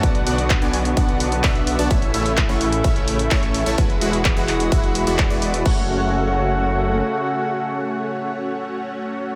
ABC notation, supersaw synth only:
X:1
M:4/4
L:1/16
Q:1/4=128
K:F#m
V:1 name="Supersaw synth"
[B,DFdf]2 [B,DFdf] z2 [B,DFdg] z2 [B,DFdf]3 z [B,DFde]3 [B,DFda] | [A,CEce]2 [A,CEce] z2 [A,CEcf] z2 [A,CEce]3 z [A,CEce]3 [A,CEca] | [G,EFBe]2 [G,EFBe] z2 [G,EFBf] z2 [G,EFBe]3 [G,EFBd]2 [G,EFBd]3 | [A,CFcf]16- |
[A,CFcf]16 |]